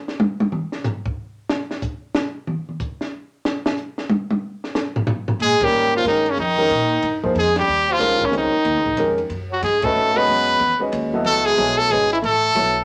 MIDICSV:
0, 0, Header, 1, 7, 480
1, 0, Start_track
1, 0, Tempo, 325203
1, 778, Time_signature, 3, 2, 24, 8
1, 18952, End_track
2, 0, Start_track
2, 0, Title_t, "Trumpet"
2, 0, Program_c, 0, 56
2, 8001, Note_on_c, 0, 68, 92
2, 8324, Note_on_c, 0, 67, 95
2, 8347, Note_off_c, 0, 68, 0
2, 8779, Note_off_c, 0, 67, 0
2, 8805, Note_on_c, 0, 65, 89
2, 8941, Note_off_c, 0, 65, 0
2, 8974, Note_on_c, 0, 63, 78
2, 9301, Note_on_c, 0, 61, 79
2, 9323, Note_off_c, 0, 63, 0
2, 9439, Note_off_c, 0, 61, 0
2, 9447, Note_on_c, 0, 63, 91
2, 10637, Note_off_c, 0, 63, 0
2, 10906, Note_on_c, 0, 68, 84
2, 11166, Note_off_c, 0, 68, 0
2, 11201, Note_on_c, 0, 67, 88
2, 11696, Note_on_c, 0, 65, 100
2, 11718, Note_off_c, 0, 67, 0
2, 12181, Note_on_c, 0, 61, 70
2, 12203, Note_off_c, 0, 65, 0
2, 12321, Note_off_c, 0, 61, 0
2, 12364, Note_on_c, 0, 63, 80
2, 13537, Note_off_c, 0, 63, 0
2, 14065, Note_on_c, 0, 66, 67
2, 14213, Note_off_c, 0, 66, 0
2, 14229, Note_on_c, 0, 68, 82
2, 14532, Note_on_c, 0, 69, 88
2, 14554, Note_off_c, 0, 68, 0
2, 15007, Note_on_c, 0, 71, 101
2, 15030, Note_off_c, 0, 69, 0
2, 15965, Note_off_c, 0, 71, 0
2, 16622, Note_on_c, 0, 69, 103
2, 16908, Note_on_c, 0, 68, 105
2, 16930, Note_off_c, 0, 69, 0
2, 17382, Note_on_c, 0, 69, 98
2, 17404, Note_off_c, 0, 68, 0
2, 17584, Note_on_c, 0, 68, 90
2, 17606, Note_off_c, 0, 69, 0
2, 17889, Note_off_c, 0, 68, 0
2, 17905, Note_on_c, 0, 64, 70
2, 17978, Note_off_c, 0, 64, 0
2, 18079, Note_on_c, 0, 69, 97
2, 18952, Note_off_c, 0, 69, 0
2, 18952, End_track
3, 0, Start_track
3, 0, Title_t, "Grand piano"
3, 0, Program_c, 1, 0
3, 8282, Note_on_c, 1, 51, 61
3, 8283, Note_on_c, 1, 58, 55
3, 8287, Note_on_c, 1, 67, 62
3, 8288, Note_on_c, 1, 61, 65
3, 8304, Note_on_c, 1, 70, 71
3, 8895, Note_off_c, 1, 51, 0
3, 8895, Note_off_c, 1, 58, 0
3, 8897, Note_off_c, 1, 67, 0
3, 8898, Note_off_c, 1, 61, 0
3, 8906, Note_off_c, 1, 70, 0
3, 8921, Note_on_c, 1, 51, 59
3, 8932, Note_on_c, 1, 56, 58
3, 8932, Note_on_c, 1, 67, 57
3, 8935, Note_on_c, 1, 70, 68
3, 8936, Note_on_c, 1, 61, 55
3, 9201, Note_off_c, 1, 51, 0
3, 9206, Note_off_c, 1, 56, 0
3, 9206, Note_off_c, 1, 67, 0
3, 9208, Note_off_c, 1, 61, 0
3, 9208, Note_off_c, 1, 70, 0
3, 9699, Note_on_c, 1, 51, 65
3, 9709, Note_on_c, 1, 56, 61
3, 9714, Note_on_c, 1, 61, 59
3, 9723, Note_on_c, 1, 67, 57
3, 9723, Note_on_c, 1, 70, 66
3, 9861, Note_off_c, 1, 51, 0
3, 9866, Note_off_c, 1, 56, 0
3, 9869, Note_off_c, 1, 61, 0
3, 9873, Note_off_c, 1, 67, 0
3, 9873, Note_off_c, 1, 70, 0
3, 10676, Note_on_c, 1, 53, 74
3, 10677, Note_on_c, 1, 58, 64
3, 10677, Note_on_c, 1, 63, 60
3, 10678, Note_on_c, 1, 68, 58
3, 10693, Note_on_c, 1, 72, 77
3, 10830, Note_off_c, 1, 53, 0
3, 10830, Note_off_c, 1, 63, 0
3, 10831, Note_off_c, 1, 58, 0
3, 10831, Note_off_c, 1, 68, 0
3, 10838, Note_off_c, 1, 72, 0
3, 11782, Note_on_c, 1, 51, 61
3, 11789, Note_on_c, 1, 56, 65
3, 11789, Note_on_c, 1, 61, 55
3, 11795, Note_on_c, 1, 67, 56
3, 11805, Note_on_c, 1, 70, 75
3, 12270, Note_off_c, 1, 70, 0
3, 12273, Note_on_c, 1, 60, 53
3, 12276, Note_on_c, 1, 55, 56
3, 12292, Note_on_c, 1, 65, 46
3, 12292, Note_on_c, 1, 70, 51
3, 12295, Note_on_c, 1, 73, 62
3, 12523, Note_off_c, 1, 51, 0
3, 12526, Note_off_c, 1, 56, 0
3, 12526, Note_off_c, 1, 61, 0
3, 12529, Note_off_c, 1, 67, 0
3, 12559, Note_off_c, 1, 60, 0
3, 12560, Note_off_c, 1, 55, 0
3, 12568, Note_off_c, 1, 65, 0
3, 12569, Note_off_c, 1, 70, 0
3, 12570, Note_off_c, 1, 73, 0
3, 13249, Note_on_c, 1, 51, 64
3, 13251, Note_on_c, 1, 61, 56
3, 13258, Note_on_c, 1, 56, 65
3, 13266, Note_on_c, 1, 67, 58
3, 13267, Note_on_c, 1, 70, 70
3, 13528, Note_off_c, 1, 51, 0
3, 13528, Note_off_c, 1, 61, 0
3, 13532, Note_off_c, 1, 56, 0
3, 13536, Note_off_c, 1, 67, 0
3, 13536, Note_off_c, 1, 70, 0
3, 14520, Note_on_c, 1, 57, 71
3, 14523, Note_on_c, 1, 61, 57
3, 14530, Note_on_c, 1, 66, 59
3, 14537, Note_on_c, 1, 75, 69
3, 14541, Note_on_c, 1, 71, 66
3, 14970, Note_off_c, 1, 57, 0
3, 14972, Note_off_c, 1, 61, 0
3, 14975, Note_off_c, 1, 66, 0
3, 14978, Note_off_c, 1, 75, 0
3, 14980, Note_off_c, 1, 71, 0
3, 14994, Note_on_c, 1, 56, 73
3, 14999, Note_on_c, 1, 61, 74
3, 15000, Note_on_c, 1, 66, 64
3, 15005, Note_on_c, 1, 71, 70
3, 15009, Note_on_c, 1, 75, 86
3, 15616, Note_off_c, 1, 56, 0
3, 15618, Note_off_c, 1, 61, 0
3, 15618, Note_off_c, 1, 66, 0
3, 15621, Note_off_c, 1, 71, 0
3, 15623, Note_off_c, 1, 75, 0
3, 15935, Note_on_c, 1, 56, 63
3, 15946, Note_on_c, 1, 61, 57
3, 15949, Note_on_c, 1, 66, 57
3, 15953, Note_on_c, 1, 71, 56
3, 15958, Note_on_c, 1, 75, 70
3, 16399, Note_off_c, 1, 56, 0
3, 16404, Note_off_c, 1, 61, 0
3, 16405, Note_off_c, 1, 66, 0
3, 16407, Note_off_c, 1, 71, 0
3, 16410, Note_off_c, 1, 75, 0
3, 16433, Note_on_c, 1, 54, 72
3, 16435, Note_on_c, 1, 64, 69
3, 16444, Note_on_c, 1, 59, 72
3, 16450, Note_on_c, 1, 69, 71
3, 16453, Note_on_c, 1, 75, 74
3, 17054, Note_off_c, 1, 54, 0
3, 17057, Note_off_c, 1, 64, 0
3, 17061, Note_off_c, 1, 59, 0
3, 17064, Note_off_c, 1, 69, 0
3, 17066, Note_off_c, 1, 75, 0
3, 17076, Note_on_c, 1, 54, 64
3, 17082, Note_on_c, 1, 64, 55
3, 17088, Note_on_c, 1, 59, 62
3, 17091, Note_on_c, 1, 73, 64
3, 17097, Note_on_c, 1, 69, 59
3, 17549, Note_off_c, 1, 54, 0
3, 17552, Note_off_c, 1, 64, 0
3, 17555, Note_off_c, 1, 59, 0
3, 17557, Note_off_c, 1, 73, 0
3, 17560, Note_off_c, 1, 69, 0
3, 17584, Note_on_c, 1, 56, 52
3, 17589, Note_on_c, 1, 61, 50
3, 17595, Note_on_c, 1, 71, 51
3, 17598, Note_on_c, 1, 75, 60
3, 17599, Note_on_c, 1, 66, 47
3, 17858, Note_off_c, 1, 56, 0
3, 17860, Note_off_c, 1, 61, 0
3, 17864, Note_off_c, 1, 71, 0
3, 17865, Note_off_c, 1, 66, 0
3, 17865, Note_off_c, 1, 75, 0
3, 18525, Note_on_c, 1, 54, 53
3, 18529, Note_on_c, 1, 59, 52
3, 18534, Note_on_c, 1, 64, 58
3, 18544, Note_on_c, 1, 69, 52
3, 18545, Note_on_c, 1, 73, 66
3, 18809, Note_off_c, 1, 54, 0
3, 18811, Note_off_c, 1, 59, 0
3, 18814, Note_off_c, 1, 64, 0
3, 18819, Note_off_c, 1, 69, 0
3, 18819, Note_off_c, 1, 73, 0
3, 18952, End_track
4, 0, Start_track
4, 0, Title_t, "Trombone"
4, 0, Program_c, 2, 57
4, 8001, Note_on_c, 2, 56, 95
4, 8320, Note_on_c, 2, 55, 89
4, 8342, Note_off_c, 2, 56, 0
4, 8777, Note_off_c, 2, 55, 0
4, 8796, Note_on_c, 2, 53, 80
4, 8936, Note_off_c, 2, 53, 0
4, 8966, Note_on_c, 2, 51, 66
4, 9284, Note_on_c, 2, 49, 70
4, 9306, Note_off_c, 2, 51, 0
4, 9430, Note_off_c, 2, 49, 0
4, 9442, Note_on_c, 2, 51, 91
4, 10635, Note_off_c, 2, 51, 0
4, 10878, Note_on_c, 2, 56, 87
4, 11151, Note_off_c, 2, 56, 0
4, 11167, Note_on_c, 2, 55, 80
4, 11652, Note_on_c, 2, 53, 76
4, 11674, Note_off_c, 2, 55, 0
4, 12131, Note_on_c, 2, 49, 62
4, 12153, Note_off_c, 2, 53, 0
4, 12296, Note_off_c, 2, 49, 0
4, 12307, Note_on_c, 2, 51, 74
4, 13509, Note_off_c, 2, 51, 0
4, 14016, Note_on_c, 2, 54, 66
4, 14174, Note_off_c, 2, 54, 0
4, 14183, Note_on_c, 2, 56, 75
4, 14471, Note_on_c, 2, 57, 86
4, 14494, Note_off_c, 2, 56, 0
4, 14974, Note_on_c, 2, 59, 86
4, 14996, Note_off_c, 2, 57, 0
4, 15948, Note_off_c, 2, 59, 0
4, 16610, Note_on_c, 2, 57, 94
4, 16927, Note_on_c, 2, 56, 89
4, 16949, Note_off_c, 2, 57, 0
4, 17414, Note_on_c, 2, 57, 81
4, 17436, Note_off_c, 2, 56, 0
4, 17566, Note_on_c, 2, 56, 76
4, 17588, Note_off_c, 2, 57, 0
4, 17880, Note_off_c, 2, 56, 0
4, 17889, Note_on_c, 2, 52, 71
4, 17965, Note_off_c, 2, 52, 0
4, 18025, Note_on_c, 2, 57, 81
4, 18943, Note_off_c, 2, 57, 0
4, 18952, End_track
5, 0, Start_track
5, 0, Title_t, "Upright bass"
5, 0, Program_c, 3, 32
5, 7962, Note_on_c, 3, 46, 79
5, 8250, Note_off_c, 3, 46, 0
5, 8448, Note_on_c, 3, 44, 88
5, 8912, Note_off_c, 3, 44, 0
5, 8922, Note_on_c, 3, 43, 83
5, 9389, Note_off_c, 3, 43, 0
5, 9409, Note_on_c, 3, 41, 82
5, 9873, Note_off_c, 3, 41, 0
5, 9898, Note_on_c, 3, 46, 88
5, 10358, Note_off_c, 3, 46, 0
5, 10368, Note_on_c, 3, 43, 73
5, 10833, Note_off_c, 3, 43, 0
5, 10846, Note_on_c, 3, 41, 89
5, 11313, Note_off_c, 3, 41, 0
5, 11335, Note_on_c, 3, 39, 80
5, 11794, Note_off_c, 3, 39, 0
5, 11802, Note_on_c, 3, 36, 85
5, 12092, Note_off_c, 3, 36, 0
5, 12277, Note_on_c, 3, 37, 89
5, 12570, Note_off_c, 3, 37, 0
5, 12765, Note_on_c, 3, 39, 84
5, 12939, Note_off_c, 3, 39, 0
5, 12939, Note_on_c, 3, 37, 46
5, 13072, Note_off_c, 3, 37, 0
5, 13081, Note_on_c, 3, 34, 61
5, 13234, Note_off_c, 3, 34, 0
5, 13241, Note_on_c, 3, 41, 77
5, 13712, Note_off_c, 3, 41, 0
5, 13719, Note_on_c, 3, 42, 83
5, 14191, Note_off_c, 3, 42, 0
5, 14202, Note_on_c, 3, 43, 84
5, 14673, Note_off_c, 3, 43, 0
5, 14688, Note_on_c, 3, 44, 69
5, 15156, Note_off_c, 3, 44, 0
5, 15163, Note_on_c, 3, 42, 79
5, 15629, Note_off_c, 3, 42, 0
5, 15638, Note_on_c, 3, 40, 84
5, 15932, Note_off_c, 3, 40, 0
5, 16117, Note_on_c, 3, 39, 86
5, 16587, Note_off_c, 3, 39, 0
5, 16596, Note_on_c, 3, 37, 85
5, 17071, Note_off_c, 3, 37, 0
5, 17086, Note_on_c, 3, 35, 84
5, 17557, Note_off_c, 3, 35, 0
5, 17568, Note_on_c, 3, 32, 78
5, 18038, Note_off_c, 3, 32, 0
5, 18045, Note_on_c, 3, 33, 81
5, 18517, Note_off_c, 3, 33, 0
5, 18531, Note_on_c, 3, 35, 83
5, 18952, Note_off_c, 3, 35, 0
5, 18952, End_track
6, 0, Start_track
6, 0, Title_t, "Muted upright bass strokes"
6, 8272, Note_on_c, 9, 29, 40
6, 8419, Note_off_c, 9, 29, 0
6, 12113, Note_on_c, 9, 29, 37
6, 12261, Note_off_c, 9, 29, 0
6, 12600, Note_on_c, 9, 29, 36
6, 12748, Note_off_c, 9, 29, 0
6, 15944, Note_on_c, 9, 29, 40
6, 16092, Note_off_c, 9, 29, 0
6, 18952, End_track
7, 0, Start_track
7, 0, Title_t, "Drums"
7, 122, Note_on_c, 9, 38, 59
7, 270, Note_off_c, 9, 38, 0
7, 292, Note_on_c, 9, 48, 116
7, 439, Note_off_c, 9, 48, 0
7, 595, Note_on_c, 9, 48, 108
7, 743, Note_off_c, 9, 48, 0
7, 770, Note_on_c, 9, 47, 99
7, 918, Note_off_c, 9, 47, 0
7, 1067, Note_on_c, 9, 38, 55
7, 1214, Note_off_c, 9, 38, 0
7, 1244, Note_on_c, 9, 44, 58
7, 1247, Note_on_c, 9, 43, 103
7, 1391, Note_off_c, 9, 44, 0
7, 1394, Note_off_c, 9, 43, 0
7, 1559, Note_on_c, 9, 36, 90
7, 1706, Note_off_c, 9, 36, 0
7, 2206, Note_on_c, 9, 38, 100
7, 2353, Note_off_c, 9, 38, 0
7, 2520, Note_on_c, 9, 38, 54
7, 2668, Note_off_c, 9, 38, 0
7, 2686, Note_on_c, 9, 44, 62
7, 2690, Note_on_c, 9, 36, 80
7, 2833, Note_off_c, 9, 44, 0
7, 2838, Note_off_c, 9, 36, 0
7, 3167, Note_on_c, 9, 38, 116
7, 3315, Note_off_c, 9, 38, 0
7, 3651, Note_on_c, 9, 47, 97
7, 3799, Note_off_c, 9, 47, 0
7, 3966, Note_on_c, 9, 47, 50
7, 4114, Note_off_c, 9, 47, 0
7, 4131, Note_on_c, 9, 44, 63
7, 4132, Note_on_c, 9, 36, 77
7, 4278, Note_off_c, 9, 44, 0
7, 4280, Note_off_c, 9, 36, 0
7, 4441, Note_on_c, 9, 38, 55
7, 4588, Note_off_c, 9, 38, 0
7, 5095, Note_on_c, 9, 38, 98
7, 5242, Note_off_c, 9, 38, 0
7, 5399, Note_on_c, 9, 38, 110
7, 5547, Note_off_c, 9, 38, 0
7, 5560, Note_on_c, 9, 44, 62
7, 5707, Note_off_c, 9, 44, 0
7, 5874, Note_on_c, 9, 38, 60
7, 6021, Note_off_c, 9, 38, 0
7, 6044, Note_on_c, 9, 48, 110
7, 6192, Note_off_c, 9, 48, 0
7, 6354, Note_on_c, 9, 48, 98
7, 6502, Note_off_c, 9, 48, 0
7, 6848, Note_on_c, 9, 38, 50
7, 6996, Note_off_c, 9, 38, 0
7, 7011, Note_on_c, 9, 44, 63
7, 7014, Note_on_c, 9, 38, 112
7, 7158, Note_off_c, 9, 44, 0
7, 7161, Note_off_c, 9, 38, 0
7, 7321, Note_on_c, 9, 43, 113
7, 7468, Note_off_c, 9, 43, 0
7, 7481, Note_on_c, 9, 43, 126
7, 7629, Note_off_c, 9, 43, 0
7, 7793, Note_on_c, 9, 43, 113
7, 7941, Note_off_c, 9, 43, 0
7, 7971, Note_on_c, 9, 51, 57
7, 8118, Note_off_c, 9, 51, 0
7, 8275, Note_on_c, 9, 51, 77
7, 8279, Note_on_c, 9, 36, 88
7, 8423, Note_off_c, 9, 51, 0
7, 8426, Note_off_c, 9, 36, 0
7, 8445, Note_on_c, 9, 44, 64
7, 8592, Note_off_c, 9, 44, 0
7, 8933, Note_on_c, 9, 44, 63
7, 8933, Note_on_c, 9, 51, 63
7, 9081, Note_off_c, 9, 44, 0
7, 9081, Note_off_c, 9, 51, 0
7, 9238, Note_on_c, 9, 51, 45
7, 9385, Note_off_c, 9, 51, 0
7, 9412, Note_on_c, 9, 51, 50
7, 9559, Note_off_c, 9, 51, 0
7, 9883, Note_on_c, 9, 44, 61
7, 9883, Note_on_c, 9, 51, 63
7, 10031, Note_off_c, 9, 44, 0
7, 10031, Note_off_c, 9, 51, 0
7, 10368, Note_on_c, 9, 51, 65
7, 10516, Note_off_c, 9, 51, 0
7, 10680, Note_on_c, 9, 36, 54
7, 10828, Note_off_c, 9, 36, 0
7, 10857, Note_on_c, 9, 51, 46
7, 11004, Note_off_c, 9, 51, 0
7, 11157, Note_on_c, 9, 51, 66
7, 11160, Note_on_c, 9, 38, 78
7, 11305, Note_off_c, 9, 51, 0
7, 11308, Note_off_c, 9, 38, 0
7, 11334, Note_on_c, 9, 44, 53
7, 11482, Note_off_c, 9, 44, 0
7, 11813, Note_on_c, 9, 44, 51
7, 11813, Note_on_c, 9, 51, 71
7, 11816, Note_on_c, 9, 38, 41
7, 11960, Note_off_c, 9, 44, 0
7, 11960, Note_off_c, 9, 51, 0
7, 11963, Note_off_c, 9, 38, 0
7, 12120, Note_on_c, 9, 36, 53
7, 12125, Note_on_c, 9, 51, 43
7, 12267, Note_off_c, 9, 36, 0
7, 12273, Note_off_c, 9, 51, 0
7, 12297, Note_on_c, 9, 51, 58
7, 12444, Note_off_c, 9, 51, 0
7, 12765, Note_on_c, 9, 51, 59
7, 12913, Note_off_c, 9, 51, 0
7, 13072, Note_on_c, 9, 36, 58
7, 13220, Note_off_c, 9, 36, 0
7, 13240, Note_on_c, 9, 44, 58
7, 13240, Note_on_c, 9, 51, 64
7, 13388, Note_off_c, 9, 44, 0
7, 13388, Note_off_c, 9, 51, 0
7, 13548, Note_on_c, 9, 51, 41
7, 13695, Note_off_c, 9, 51, 0
7, 13724, Note_on_c, 9, 51, 49
7, 13872, Note_off_c, 9, 51, 0
7, 14207, Note_on_c, 9, 44, 58
7, 14207, Note_on_c, 9, 51, 64
7, 14354, Note_off_c, 9, 44, 0
7, 14354, Note_off_c, 9, 51, 0
7, 14498, Note_on_c, 9, 51, 74
7, 14511, Note_on_c, 9, 36, 90
7, 14645, Note_off_c, 9, 51, 0
7, 14659, Note_off_c, 9, 36, 0
7, 14684, Note_on_c, 9, 44, 55
7, 14832, Note_off_c, 9, 44, 0
7, 14985, Note_on_c, 9, 51, 42
7, 15133, Note_off_c, 9, 51, 0
7, 15156, Note_on_c, 9, 51, 57
7, 15303, Note_off_c, 9, 51, 0
7, 15637, Note_on_c, 9, 51, 64
7, 15784, Note_off_c, 9, 51, 0
7, 16125, Note_on_c, 9, 44, 57
7, 16125, Note_on_c, 9, 51, 77
7, 16272, Note_off_c, 9, 44, 0
7, 16272, Note_off_c, 9, 51, 0
7, 16598, Note_on_c, 9, 51, 52
7, 16746, Note_off_c, 9, 51, 0
7, 17085, Note_on_c, 9, 44, 50
7, 17085, Note_on_c, 9, 51, 64
7, 17232, Note_off_c, 9, 44, 0
7, 17232, Note_off_c, 9, 51, 0
7, 17570, Note_on_c, 9, 44, 63
7, 17570, Note_on_c, 9, 51, 66
7, 17718, Note_off_c, 9, 44, 0
7, 17718, Note_off_c, 9, 51, 0
7, 17884, Note_on_c, 9, 51, 42
7, 18032, Note_off_c, 9, 51, 0
7, 18062, Note_on_c, 9, 51, 52
7, 18210, Note_off_c, 9, 51, 0
7, 18533, Note_on_c, 9, 44, 60
7, 18533, Note_on_c, 9, 51, 62
7, 18681, Note_off_c, 9, 44, 0
7, 18681, Note_off_c, 9, 51, 0
7, 18952, End_track
0, 0, End_of_file